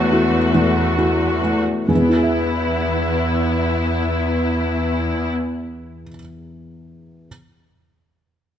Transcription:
Already playing: E2 E3 A3 F#4 C#5
0.12 E4 F#4
0.54 E3
0.98 E4 F#4
1.43 A3
1.88 E2 B3 E4 G#4
1.95 E3
2.02 B3
2.09 E4
2.16 G#4
2.23 E5

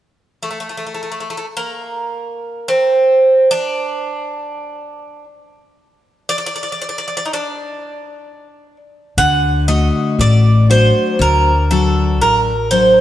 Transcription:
0.43 A3
0.51 A3
0.60 A3
0.69 A3
0.77 A3
0.87 A3
0.95 A3
1.03 A3
1.12 A3
1.20 A3
1.30 A3
1.37 A3
1.57 A#3
2.68 C4
3.51 D4
6.29 D5
6.38 D5
6.46 D5
6.56 D5
6.63 D5
6.72 D5
6.81 D5
6.89 D5
6.98 D5
7.08 D5
7.17 D5
7.25 D#4
7.33 D4
9.17 D2 D3 F#5
9.68 A3 F#4 D#5
10.19 A1 A3 D5
10.70 F#3 D4 F#4 C5
11.19 D2 D3 A#4
11.71 F#3 D4 F#4 A4
12.21 A1 A#4
12.71 F#3 D4 F#4 C5

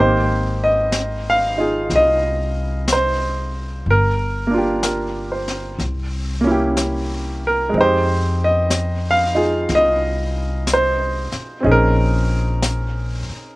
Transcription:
Already playing: G#1 A#3 C4 D#4 G4
0.00 C5
0.64 D#5
0.92 brush sweep, snare, hi-hat pedal
1.30 F5
1.58 D#4 F4 G#4
1.90 C2, brush sweep, snare
1.96 D#5
2.88 brush sweep, snare, hi-hat pedal
2.93 C5
3.86 G1, brush sweep
3.90 A#4
4.47 A#3 D4
4.54 F4 G4
4.83 A#4, brush sweep, snare, hi-hat pedal
5.32 C5
5.48 snare
5.79 C2, brush sweep, snare
6.41 A#3 C#4
6.47 E4
6.51 G4
6.77 brush sweep, snare, hi-hat pedal
7.47 A#4
7.69 G#3
7.73 F2 C4 D#4, brush sweep
7.80 G4 C5
8.44 D#5
8.70 brush sweep, snare, hi-hat pedal
9.11 F5
9.35 D#4 F4 G#4
9.69 C2, brush sweep, snare
9.75 D#5
10.67 brush sweep, snare, hi-hat pedal
10.73 C5
11.32 muted upright bass stroke, snare
11.60 A#1 C4 C#4
11.65 D#4 G#4, brush sweep
11.71 A#4
12.62 brush sweep, snare, hi-hat pedal
13.30 muted upright bass stroke

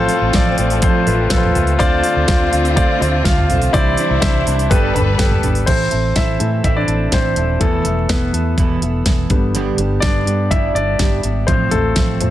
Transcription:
Already playing: A2 F3 A3 C4 F4 A4 C5
0.09 A3 C4 F4, open hi-hat
0.21 A1
0.33 A1 F3 A3 C4 F4 A4 D5, kick, snare, open hi-hat
0.58 A1 A3 C4 F4, open hi-hat
0.70 open hi-hat
0.82 A2 F3 A3 C4 F4 A4 C5, kick, open hi-hat
1.06 A1 A3 C4 F4 A4 B4, open hi-hat
1.30 A1 F3 A3 C4 F4 A4 B4, kick, snare, open hi-hat
1.37 C5
1.43 floor tom
1.55 C#2 A3 C4 F4, floor tom, open hi-hat
1.67 open hi-hat
1.79 D2 D3 A3 C4 F4 C5 D5, kick, open hi-hat
2.04 A3 C4 F4, open hi-hat
2.16 D2
2.28 D2 D3 A3 C4 F4 C5 D5, kick, snare, open hi-hat
2.52 D2 A3 C4 F4, open hi-hat
2.65 open hi-hat
2.75 D3 A3 C4 F4 C5 D5, kick, open hi-hat
3.00 D2 A3 C4 F4 C5 D5, open hi-hat
3.24 D2 D3 A3 C4 F4 C5 F5, kick, snare, open hi-hat
3.38 floor tom
3.49 B1 A3 C4 F4, floor tom, open hi-hat
3.62 open hi-hat
3.73 C2 C3 E3 G3 C4 D4 E4 C5 D5, kick, open hi-hat
3.97 G3 D4 E4, open hi-hat
4.10 C2
4.21 C2 E3 G3 D4 E4 C5 E5, kick, snare, open hi-hat
4.45 C2 G3 D4 E4, open hi-hat
4.59 open hi-hat
4.70 G1 G2 G3 B3 D4 G4 A4 B4, kick, open hi-hat
4.94 G1 B3 D4 G4 A4 B4, floor tom, open hi-hat
5.18 G3 B3 D4 G4 A4 B4, kick, snare, open hi-hat
5.31 floor tom
5.42 G#1 B3 D4 A4, floor tom, open hi-hat
5.55 open hi-hat
5.66 A1 A2 E3 C4 E4 A4 C5, kick, closed hi-hat, crash
5.90 A1 C4 E4 A4, closed hi-hat
6.15 E3 C4 E4 A4 E5, kick, snare, closed hi-hat
6.39 A2 E3 A3 C4 E4 A4, closed hi-hat
6.64 A1 A2 E3 C4 E4 A4 E5, kick, closed hi-hat
6.76 D4 D5
6.87 A1 C4 E4 A4, closed hi-hat
7.12 A1 E3 C4 E4 A4 C5, kick, snare, closed hi-hat
7.36 D#1 C4 E4 A4, closed hi-hat
7.60 E1 E2 B2 E3 A3 B3 E4 A4, kick, closed hi-hat
7.84 E1 E3 B3 E4 A4, closed hi-hat
8.09 E1 E3 B3 E4 A4 B4, kick, snare, closed hi-hat
8.33 E2 E3 B3 E4 A4, closed hi-hat
8.57 E1 E2 B2 E3 B3 E4 A4, kick, closed hi-hat
8.81 E1 E3 B3 E4 A4, closed hi-hat
9.06 E1 E3 B3 E4 A4, kick, snare, closed hi-hat
9.30 G1 D3 G3 B3 D4 G4, kick, closed hi-hat
9.55 G2 D3 G3 B3 D4 G4, closed hi-hat
9.78 G1 G3 B3 D4 G4, closed hi-hat
10.00 G1 G3 B3 D4 D5, kick, snare, closed hi-hat
10.05 D4 G4
10.26 G2 G3 B3 D4 G4, closed hi-hat
10.51 G1 G2 D3 G3 B3 D4 E4 G4 E5, kick, closed hi-hat
10.75 G1 G3 B3 D4 G4 D5, closed hi-hat
10.99 G1 G3 B3 D4 G4, kick, snare, closed hi-hat
11.23 G#1 G3 B3 D4 G4, closed hi-hat
11.47 A1 A2 F3 A3 C4 F4 C5, kick, closed hi-hat
11.71 A1 A3 C4 F4 A4, closed hi-hat, floor tom
11.95 A1 F3 A3 C4 F4, kick, snare, closed hi-hat
12.20 A2 F3 A3 C4 F4, closed hi-hat, floor tom

